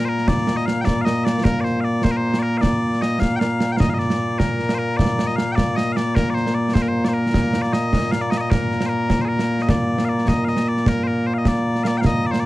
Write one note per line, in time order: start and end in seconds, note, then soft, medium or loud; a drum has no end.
0.00 12.46 A#2 medium
0.00 12.46 A#3 medium
0.05 0.28 A#4 medium
0.05 0.09 C5 medium
0.18 snare soft
0.28 0.57 D5 loud
0.28 concert bass drum medium
0.28 snare loud
0.38 snare soft
0.47 snare medium
0.57 0.66 D#5 medium
0.57 snare soft
0.66 0.81 F5 loud
0.66 snare medium
0.81 1.01 D5 loud
0.81 0.85 G5 loud
0.87 concert bass drum medium
0.87 snare medium
1.01 1.24 D#5 loud
1.01 1.05 F5 loud
1.07 snare medium
1.24 1.44 D5 loud
1.24 snare medium
1.44 1.61 A#4 loud
1.44 concert bass drum medium
1.44 snare loud
1.61 1.81 C5 medium
1.61 1.64 D5 medium
1.65 snare soft
1.81 2.04 D5 loud
1.81 1.84 F5 loud
2.04 2.11 C5 loud
2.04 concert bass drum medium
2.04 snare loud
2.11 2.17 A#4 medium
2.17 2.39 C5 medium
2.34 snare medium
2.39 2.58 A#4 loud
2.39 2.43 D5 loud
2.58 3.02 D5 loud
2.58 2.61 F5 loud
2.63 concert bass drum medium
2.63 snare medium
2.93 snare soft
3.02 3.20 D#5 loud
3.02 snare medium
3.20 3.36 F5 loud
3.20 concert bass drum soft
3.20 snare medium
3.36 3.72 F5 loud
3.36 3.39 G5 loud
3.41 snare medium
3.60 snare medium
3.72 3.77 G5 medium
3.77 3.90 D#5 loud
3.77 3.80 F5 medium
3.77 concert bass drum medium
3.77 snare loud
3.90 3.94 F5 medium
3.94 3.98 D#5 medium
3.98 4.39 D5 loud
3.98 snare soft
4.10 snare medium
4.39 4.75 A#4 medium
4.39 concert bass drum medium
4.39 snare medium
4.59 snare soft
4.69 snare medium
4.75 4.97 A#4 medium
4.75 4.79 C5 medium
4.97 5.27 D5 loud
4.97 concert bass drum medium
4.97 snare loud
5.09 snare soft
5.19 snare medium
5.27 5.36 D#5 medium
5.27 snare soft
5.36 5.52 F5 loud
5.36 snare medium
5.52 5.76 D5 loud
5.52 5.55 G5 loud
5.58 concert bass drum soft
5.58 snare medium
5.76 5.93 D#5 loud
5.76 snare medium
5.93 6.15 D5 loud
5.93 5.96 F5 loud
5.97 snare medium
6.15 6.30 A#4 loud
6.15 concert bass drum medium
6.15 snare medium
6.30 6.34 D5 medium
6.34 6.55 C5 medium
6.34 snare soft
6.47 snare medium
6.55 6.74 D5 medium
6.74 6.82 C5 medium
6.74 concert bass drum medium
6.74 snare medium
6.82 6.88 A#4 medium
6.88 7.05 C5 medium
7.05 7.14 C5 medium
7.05 7.08 D5 medium
7.05 snare medium
7.14 7.62 A#4 loud
7.34 concert bass drum medium
7.34 snare loud
7.44 snare soft
7.53 snare medium
7.62 7.73 D5 medium
7.62 snare soft
7.73 8.12 D#5 loud
7.73 snare medium
7.93 concert bass drum medium
7.93 snare medium
8.12 8.21 F5 loud
8.12 snare medium
8.21 8.31 D5 medium
8.31 8.37 D#5 loud
8.31 snare medium
8.37 8.40 D5 medium
8.37 8.50 D#5 medium
8.50 8.86 A#4 medium
8.50 concert bass drum medium
8.50 snare loud
8.72 snare soft
8.81 snare medium
8.86 9.21 A#4 medium
8.86 8.89 C5 medium
9.10 concert bass drum medium
9.10 snare loud
9.21 9.27 G#4 medium
9.21 9.25 C5 medium
9.27 9.62 A#4 medium
9.39 snare medium
9.59 9.69 D#5 medium
9.59 snare soft
9.69 10.05 D5 loud
9.69 concert bass drum medium
9.69 snare loud
9.98 snare medium
10.05 10.09 F5 medium
10.09 10.28 D5 medium
10.18 snare soft
10.28 10.45 D#5 medium
10.28 concert bass drum medium
10.28 snare medium
10.45 10.68 D#5 medium
10.45 10.49 F5 medium
10.45 snare soft
10.57 snare medium
10.68 10.88 D5 loud
10.77 snare soft
10.86 11.04 A#4 loud
10.86 concert bass drum medium
10.86 snare medium
11.04 11.27 A#4 medium
11.04 11.07 C5 medium
11.27 11.34 C5 medium
11.34 11.38 F5 medium
11.38 11.48 D#5 medium
11.45 11.84 D5 medium
11.45 concert bass drum medium
11.45 snare medium
11.55 snare soft
11.75 snare soft
11.84 11.98 D5 loud
11.84 11.87 F5 loud
11.84 snare medium
11.98 12.06 F5 medium
11.98 12.01 G5 medium
12.05 12.26 D#5 loud
12.05 concert bass drum medium
12.05 snare medium
12.26 12.31 D5 medium
12.31 12.40 C5 medium
12.31 snare medium
12.40 12.46 D5 loud